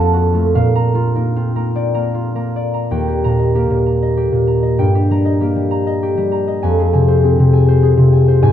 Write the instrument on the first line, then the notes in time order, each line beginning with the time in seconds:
harp
Already playing: F2 F4 F5 F#5 A5
0.13 F#4
0.34 A3 F4
0.55 A#2 F5
0.76 A#5
0.95 F4
1.15 A#3 D#4
1.36 C4 F4
1.56 A#3 A#5
1.75 C4 D5
1.94 A#3 A#5
2.14 F4
2.35 A#3 A#5
2.56 D5
2.74 A#5
2.91 D#2 G5
3.08 G4
3.24 A#2 A#5
3.39 D#5
3.55 A#3 G4
3.70 A#2
3.86 A#5
4.02 D#5
4.17 G4
4.32 A#2
4.47 A#5
4.63 D#5
4.78 G2 G5
4.95 G4
5.10 G3 A#5
5.25 D#5
5.41 A#3 G4
5.56 G3
5.71 A#5
5.87 D#5
6.03 G4
6.17 G3
6.32 A#5
6.48 D#5
6.63 F2 G#5
6.79 G#4
6.93 C3 G#5
7.08 C5
7.24 C4 G#4
7.39 C3
7.53 G#5
7.68 C5
7.83 G#4
7.97 C3
8.13 G#5
8.28 C5
8.42 G#2 G#5